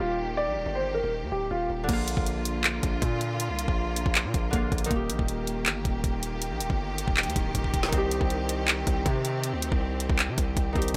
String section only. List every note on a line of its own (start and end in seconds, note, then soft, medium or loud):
0.00 1.86 D#3 medium
0.00 1.85 A#3 medium
0.00 1.86 G4 medium
1.89 4.88 D3 medium
1.89 7.89 A#3 medium
1.89 4.88 F4 medium
4.91 10.91 D#3 medium
4.91 10.91 G4 medium
7.93 10.91 C4 medium